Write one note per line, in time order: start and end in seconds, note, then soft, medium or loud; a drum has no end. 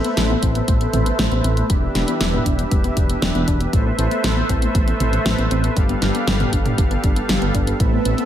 0.00 1.68 A3 medium
0.00 1.68 A4 medium
0.00 8.25 B4 medium
0.00 1.68 C5 medium
0.00 1.68 E5 medium
0.04 0.15 B3 medium
0.04 closed hi-hat medium
0.17 0.35 A1 medium
0.17 0.28 A3 medium
0.17 snare loud
0.17 closed hi-hat medium
0.30 0.36 B3 medium
0.43 0.61 A1 loud
0.43 0.55 C4 loud
0.43 kick medium
0.43 closed hi-hat medium
0.55 0.66 B3 medium
0.55 closed hi-hat soft
0.68 0.86 A1 loud
0.68 0.79 A3 medium
0.68 kick loud
0.68 closed hi-hat medium
0.81 0.92 B3 medium
0.81 closed hi-hat soft
0.93 1.12 A1 loud
0.93 1.06 C4 medium
0.93 closed hi-hat medium
0.93 mid tom medium
1.06 1.17 B3 medium
1.06 closed hi-hat medium
1.19 1.28 A1 medium
1.19 1.30 A3 medium
1.19 snare loud
1.19 closed hi-hat medium
1.32 1.41 A1 loud
1.32 1.38 B3 loud
1.32 closed hi-hat soft
1.44 1.62 A1 loud
1.44 1.56 C4 loud
1.44 closed hi-hat medium
1.57 1.69 B3 medium
1.57 closed hi-hat soft
1.70 1.88 E1 loud
1.70 3.71 E3 medium
1.70 1.80 G3 medium
1.70 3.71 D4 medium
1.70 3.71 G4 medium
1.70 3.71 E5 medium
1.70 kick loud
1.70 closed hi-hat medium
1.83 1.93 B3 medium
1.95 2.04 E1 medium
1.95 2.07 D4 medium
1.95 snare medium
1.95 closed hi-hat medium
2.08 2.19 B3 medium
2.08 closed hi-hat medium
2.21 2.39 E1 medium
2.21 2.31 G3 medium
2.21 snare loud
2.21 closed hi-hat medium
2.33 2.40 B3 loud
2.33 mid tom medium
2.46 2.64 E1 loud
2.46 2.58 D4 loud
2.46 kick medium
2.46 closed hi-hat medium
2.59 2.70 B3 medium
2.59 closed hi-hat soft
2.71 2.90 E1 loud
2.71 2.82 G3 medium
2.71 kick loud
2.71 closed hi-hat medium
2.84 2.95 B3 medium
2.84 closed hi-hat soft
2.97 3.15 E1 medium
2.97 3.09 D4 medium
2.97 kick loud
2.97 closed hi-hat medium
3.10 3.20 B3 medium
3.10 closed hi-hat medium
3.22 3.31 E1 medium
3.22 3.33 G3 medium
3.22 snare loud
3.22 closed hi-hat medium
3.35 3.44 E1 loud
3.35 3.41 B3 medium
3.35 closed hi-hat soft
3.48 3.66 E1 loud
3.48 3.60 D4 loud
3.48 kick medium
3.48 closed hi-hat medium
3.60 3.73 B3 medium
3.60 closed hi-hat medium
3.73 3.91 A1 loud
3.73 3.84 A3 medium
3.73 5.75 A3 medium
3.73 5.75 A4 medium
3.73 5.75 C5 medium
3.73 5.75 E5 medium
3.73 kick loud
3.73 closed hi-hat medium
3.86 3.97 B3 medium
3.99 4.08 A1 medium
3.99 4.11 C4 medium
3.99 closed hi-hat medium
4.11 4.22 B3 medium
4.11 closed hi-hat medium
4.24 4.42 A1 medium
4.24 4.35 A3 medium
4.24 snare loud
4.24 closed hi-hat medium
4.37 4.43 B3 medium
4.49 4.68 A1 loud
4.49 4.62 C4 loud
4.49 kick medium
4.49 closed hi-hat medium
4.62 4.73 B3 medium
4.62 closed hi-hat soft
4.75 4.93 A1 medium
4.75 4.86 A3 medium
4.75 kick loud
4.75 closed hi-hat medium
4.88 4.98 B3 medium
4.88 closed hi-hat soft
5.00 5.18 A1 medium
5.00 5.12 C4 medium
5.00 closed hi-hat medium
5.00 mid tom medium
5.13 5.24 B3 medium
5.13 closed hi-hat medium
5.26 5.35 A1 medium
5.26 5.36 A3 medium
5.26 snare loud
5.26 closed hi-hat medium
5.38 5.48 A1 loud
5.38 5.45 B3 medium
5.38 closed hi-hat soft
5.51 5.69 A1 loud
5.51 5.63 C4 loud
5.51 closed hi-hat medium
5.64 5.76 B3 medium
5.64 closed hi-hat medium
5.76 5.95 G1 loud
5.76 7.78 G3 medium
5.76 5.87 G3 medium
5.76 7.78 G4 medium
5.76 8.25 A4 medium
5.76 7.78 F5 medium
5.76 kick loud
5.76 closed hi-hat medium
5.89 6.00 B3 medium
5.89 closed hi-hat soft
6.02 6.11 G1 medium
6.02 6.14 D4 medium
6.02 snare medium
6.02 closed hi-hat medium
6.15 6.25 B3 medium
6.15 closed hi-hat soft
6.27 6.46 G1 medium
6.27 6.38 G3 medium
6.27 snare loud
6.27 closed hi-hat medium
6.40 6.47 B3 medium
6.40 closed hi-hat soft
6.40 mid tom medium
6.53 6.71 G1 loud
6.53 6.65 D4 medium
6.53 kick medium
6.53 closed hi-hat medium
6.66 6.76 B3 medium
6.66 closed hi-hat soft
6.66 mid tom medium
6.78 6.96 G1 loud
6.78 6.89 G3 medium
6.78 kick loud
6.78 closed hi-hat medium
6.91 7.02 B3 medium
6.91 closed hi-hat soft
7.04 7.22 G1 medium
7.04 7.16 D4 medium
7.04 kick loud
7.04 closed hi-hat medium
7.16 7.27 B3 medium
7.16 closed hi-hat soft
7.29 7.38 G1 medium
7.29 7.40 G3 medium
7.29 snare loud
7.29 closed hi-hat medium
7.42 7.51 G1 loud
7.42 7.48 B3 medium
7.42 closed hi-hat soft
7.55 7.73 G1 loud
7.55 7.67 D4 loud
7.55 kick medium
7.55 closed hi-hat medium
7.67 7.79 B3 medium
7.67 closed hi-hat medium
7.80 7.98 A1 loud
7.80 8.25 A3 medium
7.80 7.91 A3 medium
7.80 8.15 A3 medium
7.80 8.25 C4 medium
7.80 8.15 C4 medium
7.80 8.15 B4 medium
7.80 8.25 E5 medium
7.80 kick loud
7.80 closed hi-hat medium
7.93 8.03 B3 medium
8.05 8.14 A1 medium
8.05 8.18 C4 medium
8.05 closed hi-hat medium
8.18 8.25 A3 medium
8.18 8.25 B3 medium
8.18 8.25 C4 medium
8.18 8.25 B4 medium
8.18 closed hi-hat soft